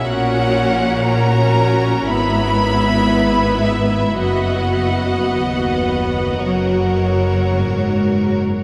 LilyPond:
<<
  \new Staff \with { instrumentName = "Violin section" } { \time 4/4 \key fis \mixolydian \tempo 4 = 54 fis''4 ais''4 b''4. e''8 | fis''2. r4 | }
  \new Staff \with { instrumentName = "Violin section" } { \time 4/4 \key fis \mixolydian <ais' cis''>4 <ais' cis''>4 <b' e''>2 | <b' dis''>2 <ais' cis''>2 | }
  \new Staff \with { instrumentName = "Viola section" } { \time 4/4 \key fis \mixolydian <cis' fis'>4 <cis' fis'>4 <b e'>2 | <b fis'>2 <fis fis'>2 | }
  \new Staff \with { instrumentName = "Cello section" } { \clef bass \time 4/4 \key fis \mixolydian ais,2 gis,2 | fis,4 dis,4 fis,4 gis,4 | }
  \new Staff \with { instrumentName = "Double bass section" } { \clef bass \time 4/4 \key fis \mixolydian ais,,2 gis,,2 | fis,,2 fis,,2 | }
>>